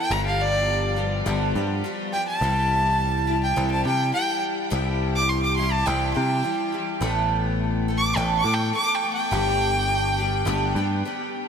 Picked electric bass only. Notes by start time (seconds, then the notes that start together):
0.10 G1
1.26 G1
1.55 G2
2.41 C2
3.57 C2
3.85 C3
4.72 C2
5.87 C2
6.17 C3
7.01 A1
8.16 A1
8.44 A2
9.32 G1
10.46 G1
10.75 G2